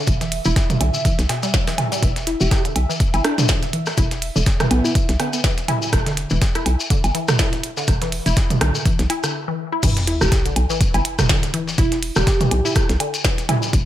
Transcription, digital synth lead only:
2.41 2.61 G4 medium
3.25 3.33 D4 medium
3.38 3.45 D4 medium
4.71 4.92 B3 medium
5.20 5.28 B3 medium
5.33 5.40 B3 medium
10.21 10.41 G4 medium
11.78 11.99 E4 medium
12.16 12.84 G4 medium

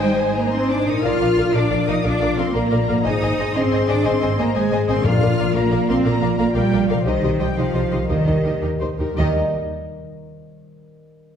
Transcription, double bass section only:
0.00 0.82 G#1 medium
1.04 1.10 A#1 medium
1.20 1.27 A#1 soft
1.37 1.44 A#1 soft
1.54 1.60 A#1 medium
1.70 1.77 A#1 soft
1.88 1.94 A#1 medium
2.04 2.11 A#1 medium
2.21 2.28 A#1 soft
2.39 2.45 A#1 soft
2.55 2.62 A#1 soft
2.71 2.78 A#1 soft
2.89 2.95 A#1 soft
3.05 3.12 G#1 medium
3.22 3.29 G#1 soft
3.39 3.45 G#1 soft
3.55 3.62 G#1 medium
3.72 3.79 G#1 soft
3.89 3.95 G#1 medium
4.06 4.12 G#1 medium
4.22 4.29 G#1 soft
4.39 4.46 G#1 medium
4.56 4.62 G#1 soft
4.72 4.79 G#1 soft
4.89 4.95 G#1 soft
5.06 5.12 A#1 medium
5.22 5.29 A#1 medium
5.38 5.45 A#1 soft
5.55 5.62 A#1 medium
5.72 5.78 A#1 medium
5.89 5.95 A#1 medium
6.05 6.12 A#1 medium
6.22 6.28 A#1 soft
6.38 6.45 A#1 medium
6.54 6.61 A#1 medium
6.72 6.78 A#1 medium
6.89 6.95 A#1 soft
7.06 7.12 C2 medium
7.22 7.29 C2 soft
7.39 7.46 C2 soft
7.56 7.63 C2 soft
7.74 7.81 C2 soft
7.92 7.99 C2 soft
8.10 8.17 D#2 soft
8.28 8.35 D#2 soft
8.45 8.52 D#2 soft
8.63 8.70 D#2 soft
8.81 8.88 D#2 soft
8.99 9.06 D#2 soft
9.17 9.37 D#2 medium

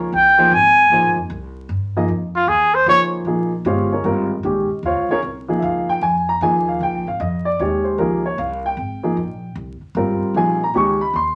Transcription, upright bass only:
0.00 0.12 C#2 medium
0.12 0.51 C2 medium
0.51 0.89 G#1 loud
0.90 1.03 A#1 medium
1.03 1.15 G#1 medium
1.16 1.29 F1 medium
1.30 1.68 C2 medium
1.69 2.07 G2 loud
2.08 2.46 F2 medium
2.47 2.85 D#2 medium
2.86 3.24 C#2 medium
3.25 3.63 A#1 medium
3.65 4.03 G1 medium
4.04 4.42 G#1 medium
4.43 4.68 A#1 medium
4.70 muted upright bass stroke soft
4.83 4.95 D#2 medium
4.95 5.08 C#2 medium
5.09 5.21 A#1 medium
5.22 5.61 C2 medium
5.62 5.86 C#2 medium
5.88 muted upright bass stroke soft
6.01 6.40 F2 medium
6.41 6.79 D#2 medium
6.80 6.94 C#2 medium
6.94 7.06 A#1 soft
7.07 7.19 G#1 medium
7.20 7.58 F2 loud
7.59 7.97 D#2 medium
7.98 8.36 C#2 medium
8.38 8.76 C2 medium
8.77 9.15 G#1 medium
9.17 9.55 A#1 medium
9.55 9.80 C2 loud
9.81 muted upright bass stroke soft
9.95 10.19 G#1 loud
10.21 muted upright bass stroke soft
10.34 10.73 A#1 medium
10.74 11.12 C#2 medium
11.13 11.35 D#2 medium

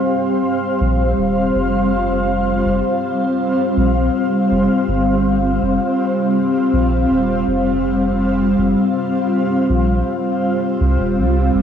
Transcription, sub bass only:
0.81 1.13 A#1 medium
1.17 1.50 D#1 medium
1.55 2.62 F1 medium
2.66 2.82 F1 medium
3.77 4.10 A#1 medium
4.51 4.67 F1 medium
4.88 5.59 G1 medium
5.62 5.79 F1 medium
6.73 7.06 A#1 medium
7.47 8.55 F1 medium
8.58 8.75 F1 medium
9.69 10.02 A#1 loud
10.81 10.97 C2 medium
10.99 11.19 D#1 medium
11.18 11.50 C2 medium
11.55 11.62 F1 medium

